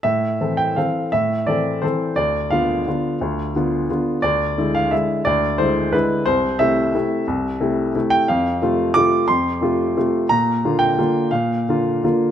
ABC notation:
X:1
M:3/4
L:1/8
Q:1/4=175
K:Am
V:1 name="Grand piano"
e3 g f2 | e2 d2 c2 | d2 f4- | f6 |
d3 f e2 | d2 c2 B2 | c2 e4- | e4- e g |
[K:Bblyd] f4 d'2 | c'6 | b3 g3 | f4 z2 |]
V:2 name="Grand piano"
A,,2 [E,CA]2 [E,CA]2 | A,,2 [E,CA]2 [E,CA]2 | D,,2 [D,B,F]2 [D,B,F]2 | D,,2 [D,B,F]2 [D,B,F]2 |
D,,2 [D,^G,E]2 [D,G,E]2 | D,,2 [D,^G,E]2 [D,G,E]2 | C,,2 [C,A,E]2 [C,A,E]2 | C,,2 [C,A,E]2 [C,A,E]2 |
[K:Bblyd] F,,2 [C,A,F]2 [C,A,F]2 | F,,2 [C,A,F]2 [C,A,F]2 | B,,2 [D,B,F]2 [D,B,F]2 | B,,2 [D,B,F]2 [D,B,F]2 |]